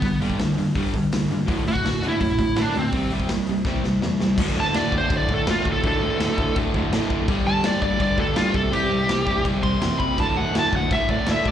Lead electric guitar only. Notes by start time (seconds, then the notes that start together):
Already playing: B3
1.68 F#4
2.08 E4
2.62 D4
2.78 C4
4.60 A5
4.76 D5
4.98 C5
5.17 D5
5.34 A4
5.51 F4
5.72 A4
5.87 A4
7.47 A5
7.66 D5
7.82 D5
8.02 D5
8.19 A4
8.36 F4
8.55 A4
8.73 G4
9.63 C6
9.99 B5
10.20 A5
10.37 F#5
10.59 A5
10.76 F#5
10.92 E5
11.10 D5
11.31 E5
11.48 D5